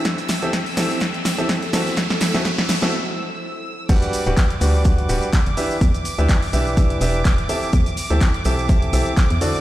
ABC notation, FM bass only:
X:1
M:4/4
L:1/16
Q:"Swing 16ths" 1/4=125
K:G
V:1 name="FM bass" clef=bass
E,, z2 D,, z2 B,,,4 B,,, z2 E,, z2 | D,, z2 C,, z2 A,,,2 z8 | G,,, z2 D,,, z2 D,,4 D,,, z2 G,,, z2 | E,, z2 D,, z2 B,,,4 E,,,4 z2 |
E,, z2 D,, z2 B,,,4 B,,, z2 E,, z2 |]